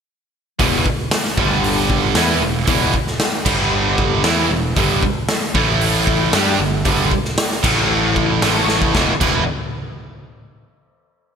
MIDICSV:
0, 0, Header, 1, 7, 480
1, 0, Start_track
1, 0, Key_signature, 1, "minor"
1, 0, Tempo, 522648
1, 545, Time_signature, 4, 2, 24, 8
1, 10428, End_track
2, 0, Start_track
2, 0, Title_t, "Overdriven electric guitar"
2, 0, Program_c, 0, 29
2, 541, Note_on_c, 0, 40, 96
2, 545, Note_on_c, 0, 47, 97
2, 549, Note_on_c, 0, 52, 86
2, 770, Note_off_c, 0, 40, 0
2, 777, Note_off_c, 0, 47, 0
2, 779, Note_off_c, 0, 52, 0
2, 1262, Note_on_c, 0, 43, 85
2, 1267, Note_on_c, 0, 50, 81
2, 1270, Note_on_c, 0, 55, 95
2, 1972, Note_off_c, 0, 43, 0
2, 1975, Note_off_c, 0, 50, 0
2, 1976, Note_off_c, 0, 55, 0
2, 1978, Note_on_c, 0, 52, 80
2, 1983, Note_on_c, 0, 59, 90
2, 1985, Note_on_c, 0, 64, 99
2, 2211, Note_off_c, 0, 52, 0
2, 2213, Note_off_c, 0, 59, 0
2, 2214, Note_off_c, 0, 64, 0
2, 2221, Note_on_c, 0, 40, 65
2, 2225, Note_on_c, 0, 47, 68
2, 2411, Note_off_c, 0, 40, 0
2, 2413, Note_off_c, 0, 47, 0
2, 2449, Note_on_c, 0, 40, 88
2, 2449, Note_on_c, 0, 47, 94
2, 2456, Note_on_c, 0, 52, 94
2, 2685, Note_off_c, 0, 40, 0
2, 2686, Note_off_c, 0, 47, 0
2, 2689, Note_off_c, 0, 52, 0
2, 3178, Note_on_c, 0, 43, 83
2, 3180, Note_on_c, 0, 50, 89
2, 3186, Note_on_c, 0, 55, 97
2, 3887, Note_off_c, 0, 43, 0
2, 3887, Note_off_c, 0, 50, 0
2, 3887, Note_off_c, 0, 55, 0
2, 3891, Note_on_c, 0, 52, 97
2, 3891, Note_on_c, 0, 59, 90
2, 3897, Note_on_c, 0, 64, 116
2, 4124, Note_off_c, 0, 52, 0
2, 4124, Note_off_c, 0, 59, 0
2, 4128, Note_off_c, 0, 64, 0
2, 4130, Note_on_c, 0, 40, 69
2, 4134, Note_on_c, 0, 47, 68
2, 4323, Note_off_c, 0, 40, 0
2, 4325, Note_off_c, 0, 47, 0
2, 4366, Note_on_c, 0, 43, 90
2, 4373, Note_on_c, 0, 50, 87
2, 4375, Note_on_c, 0, 55, 94
2, 4602, Note_off_c, 0, 43, 0
2, 4605, Note_off_c, 0, 50, 0
2, 4606, Note_off_c, 0, 55, 0
2, 5093, Note_on_c, 0, 45, 96
2, 5096, Note_on_c, 0, 52, 90
2, 5101, Note_on_c, 0, 57, 91
2, 5804, Note_off_c, 0, 45, 0
2, 5806, Note_off_c, 0, 52, 0
2, 5809, Note_off_c, 0, 57, 0
2, 5815, Note_on_c, 0, 55, 95
2, 5822, Note_on_c, 0, 67, 103
2, 5823, Note_on_c, 0, 62, 94
2, 6046, Note_off_c, 0, 55, 0
2, 6049, Note_off_c, 0, 67, 0
2, 6050, Note_off_c, 0, 62, 0
2, 6052, Note_on_c, 0, 43, 66
2, 6058, Note_on_c, 0, 50, 75
2, 6243, Note_off_c, 0, 43, 0
2, 6246, Note_off_c, 0, 50, 0
2, 6292, Note_on_c, 0, 43, 92
2, 6295, Note_on_c, 0, 50, 88
2, 6297, Note_on_c, 0, 55, 91
2, 6524, Note_off_c, 0, 43, 0
2, 6526, Note_off_c, 0, 50, 0
2, 6527, Note_off_c, 0, 55, 0
2, 7013, Note_on_c, 0, 45, 87
2, 7018, Note_on_c, 0, 52, 93
2, 7020, Note_on_c, 0, 57, 96
2, 7726, Note_off_c, 0, 45, 0
2, 7729, Note_off_c, 0, 52, 0
2, 7730, Note_off_c, 0, 57, 0
2, 7738, Note_on_c, 0, 45, 86
2, 7741, Note_on_c, 0, 52, 95
2, 7745, Note_on_c, 0, 57, 112
2, 8210, Note_off_c, 0, 45, 0
2, 8211, Note_off_c, 0, 52, 0
2, 8213, Note_off_c, 0, 57, 0
2, 8214, Note_on_c, 0, 40, 91
2, 8223, Note_on_c, 0, 47, 98
2, 8227, Note_on_c, 0, 52, 101
2, 8359, Note_off_c, 0, 40, 0
2, 8363, Note_off_c, 0, 47, 0
2, 8365, Note_off_c, 0, 52, 0
2, 8459, Note_on_c, 0, 40, 93
2, 8464, Note_on_c, 0, 47, 90
2, 8470, Note_on_c, 0, 52, 104
2, 8650, Note_off_c, 0, 40, 0
2, 8652, Note_off_c, 0, 47, 0
2, 8655, Note_off_c, 0, 52, 0
2, 10428, End_track
3, 0, Start_track
3, 0, Title_t, "Picked electric bass"
3, 0, Program_c, 1, 34
3, 549, Note_on_c, 1, 28, 96
3, 769, Note_off_c, 1, 28, 0
3, 1263, Note_on_c, 1, 31, 91
3, 1943, Note_off_c, 1, 31, 0
3, 1975, Note_on_c, 1, 40, 97
3, 2200, Note_off_c, 1, 40, 0
3, 2211, Note_on_c, 1, 28, 77
3, 2437, Note_off_c, 1, 28, 0
3, 2457, Note_on_c, 1, 28, 93
3, 2680, Note_off_c, 1, 28, 0
3, 3173, Note_on_c, 1, 31, 88
3, 3855, Note_off_c, 1, 31, 0
3, 3894, Note_on_c, 1, 40, 86
3, 4116, Note_off_c, 1, 40, 0
3, 4125, Note_on_c, 1, 28, 74
3, 4351, Note_off_c, 1, 28, 0
3, 4376, Note_on_c, 1, 31, 94
3, 4597, Note_off_c, 1, 31, 0
3, 5091, Note_on_c, 1, 33, 95
3, 5774, Note_off_c, 1, 33, 0
3, 5819, Note_on_c, 1, 43, 92
3, 6038, Note_off_c, 1, 43, 0
3, 6055, Note_on_c, 1, 31, 81
3, 6276, Note_off_c, 1, 31, 0
3, 6296, Note_on_c, 1, 31, 101
3, 6517, Note_off_c, 1, 31, 0
3, 7014, Note_on_c, 1, 33, 91
3, 7697, Note_off_c, 1, 33, 0
3, 7740, Note_on_c, 1, 33, 87
3, 8184, Note_off_c, 1, 33, 0
3, 8216, Note_on_c, 1, 28, 96
3, 8349, Note_off_c, 1, 28, 0
3, 8457, Note_on_c, 1, 28, 85
3, 8680, Note_off_c, 1, 28, 0
3, 10428, End_track
4, 0, Start_track
4, 0, Title_t, "Muted distorted electric guitar strokes"
4, 785, Note_on_c, 9, 29, 46
4, 877, Note_off_c, 9, 29, 0
4, 2698, Note_on_c, 9, 29, 53
4, 2790, Note_off_c, 9, 29, 0
4, 4621, Note_on_c, 9, 29, 49
4, 4712, Note_off_c, 9, 29, 0
4, 6530, Note_on_c, 9, 29, 50
4, 6622, Note_off_c, 9, 29, 0
4, 10428, End_track
5, 0, Start_track
5, 0, Title_t, "Muted overdriven electric guitar strokes"
5, 781, Note_on_c, 9, 29, 55
5, 873, Note_off_c, 9, 29, 0
5, 2698, Note_on_c, 9, 29, 54
5, 2790, Note_off_c, 9, 29, 0
5, 4613, Note_on_c, 9, 29, 61
5, 4705, Note_off_c, 9, 29, 0
5, 6538, Note_on_c, 9, 29, 59
5, 6630, Note_off_c, 9, 29, 0
5, 10428, End_track
6, 0, Start_track
6, 0, Title_t, "Muted picked electric bass strokes"
6, 782, Note_on_c, 9, 29, 41
6, 874, Note_off_c, 9, 29, 0
6, 2698, Note_on_c, 9, 29, 36
6, 2789, Note_off_c, 9, 29, 0
6, 4613, Note_on_c, 9, 29, 42
6, 4705, Note_off_c, 9, 29, 0
6, 6534, Note_on_c, 9, 29, 39
6, 6626, Note_off_c, 9, 29, 0
6, 10428, End_track
7, 0, Start_track
7, 0, Title_t, "Drums"
7, 545, Note_on_c, 9, 46, 55
7, 546, Note_on_c, 9, 36, 94
7, 637, Note_off_c, 9, 46, 0
7, 638, Note_off_c, 9, 36, 0
7, 786, Note_on_c, 9, 36, 79
7, 878, Note_off_c, 9, 36, 0
7, 1023, Note_on_c, 9, 38, 106
7, 1023, Note_on_c, 9, 46, 64
7, 1115, Note_off_c, 9, 38, 0
7, 1115, Note_off_c, 9, 46, 0
7, 1145, Note_on_c, 9, 38, 34
7, 1237, Note_off_c, 9, 38, 0
7, 1264, Note_on_c, 9, 36, 102
7, 1355, Note_off_c, 9, 36, 0
7, 1505, Note_on_c, 9, 46, 61
7, 1597, Note_off_c, 9, 46, 0
7, 1742, Note_on_c, 9, 36, 81
7, 1834, Note_off_c, 9, 36, 0
7, 1976, Note_on_c, 9, 38, 105
7, 1976, Note_on_c, 9, 46, 59
7, 2068, Note_off_c, 9, 38, 0
7, 2068, Note_off_c, 9, 46, 0
7, 2452, Note_on_c, 9, 46, 59
7, 2458, Note_on_c, 9, 36, 108
7, 2544, Note_off_c, 9, 46, 0
7, 2550, Note_off_c, 9, 36, 0
7, 2697, Note_on_c, 9, 36, 81
7, 2789, Note_off_c, 9, 36, 0
7, 2819, Note_on_c, 9, 38, 32
7, 2911, Note_off_c, 9, 38, 0
7, 2936, Note_on_c, 9, 38, 99
7, 2936, Note_on_c, 9, 46, 54
7, 3028, Note_off_c, 9, 38, 0
7, 3028, Note_off_c, 9, 46, 0
7, 3177, Note_on_c, 9, 36, 101
7, 3178, Note_on_c, 9, 49, 93
7, 3269, Note_off_c, 9, 36, 0
7, 3270, Note_off_c, 9, 49, 0
7, 3656, Note_on_c, 9, 36, 93
7, 3748, Note_off_c, 9, 36, 0
7, 3895, Note_on_c, 9, 38, 101
7, 3895, Note_on_c, 9, 46, 53
7, 3986, Note_off_c, 9, 38, 0
7, 3986, Note_off_c, 9, 46, 0
7, 4374, Note_on_c, 9, 46, 56
7, 4377, Note_on_c, 9, 36, 105
7, 4466, Note_off_c, 9, 46, 0
7, 4468, Note_off_c, 9, 36, 0
7, 4616, Note_on_c, 9, 36, 86
7, 4708, Note_off_c, 9, 36, 0
7, 4854, Note_on_c, 9, 38, 100
7, 4854, Note_on_c, 9, 46, 58
7, 4946, Note_off_c, 9, 38, 0
7, 4946, Note_off_c, 9, 46, 0
7, 5096, Note_on_c, 9, 36, 101
7, 5188, Note_off_c, 9, 36, 0
7, 5337, Note_on_c, 9, 46, 69
7, 5429, Note_off_c, 9, 46, 0
7, 5576, Note_on_c, 9, 36, 87
7, 5668, Note_off_c, 9, 36, 0
7, 5814, Note_on_c, 9, 38, 114
7, 5814, Note_on_c, 9, 46, 58
7, 5906, Note_off_c, 9, 38, 0
7, 5906, Note_off_c, 9, 46, 0
7, 6292, Note_on_c, 9, 46, 55
7, 6295, Note_on_c, 9, 36, 105
7, 6384, Note_off_c, 9, 46, 0
7, 6387, Note_off_c, 9, 36, 0
7, 6534, Note_on_c, 9, 36, 84
7, 6626, Note_off_c, 9, 36, 0
7, 6658, Note_on_c, 9, 38, 35
7, 6750, Note_off_c, 9, 38, 0
7, 6775, Note_on_c, 9, 38, 109
7, 6775, Note_on_c, 9, 46, 61
7, 6867, Note_off_c, 9, 38, 0
7, 6867, Note_off_c, 9, 46, 0
7, 6902, Note_on_c, 9, 38, 37
7, 6994, Note_off_c, 9, 38, 0
7, 7015, Note_on_c, 9, 36, 95
7, 7017, Note_on_c, 9, 49, 88
7, 7107, Note_off_c, 9, 36, 0
7, 7109, Note_off_c, 9, 49, 0
7, 7495, Note_on_c, 9, 36, 88
7, 7587, Note_off_c, 9, 36, 0
7, 7736, Note_on_c, 9, 38, 111
7, 7736, Note_on_c, 9, 46, 58
7, 7828, Note_off_c, 9, 38, 0
7, 7828, Note_off_c, 9, 46, 0
7, 7977, Note_on_c, 9, 38, 60
7, 8069, Note_off_c, 9, 38, 0
7, 8097, Note_on_c, 9, 36, 85
7, 8189, Note_off_c, 9, 36, 0
7, 8217, Note_on_c, 9, 36, 98
7, 8217, Note_on_c, 9, 38, 79
7, 8309, Note_off_c, 9, 36, 0
7, 8309, Note_off_c, 9, 38, 0
7, 8458, Note_on_c, 9, 36, 103
7, 8458, Note_on_c, 9, 57, 91
7, 8550, Note_off_c, 9, 36, 0
7, 8550, Note_off_c, 9, 57, 0
7, 10428, End_track
0, 0, End_of_file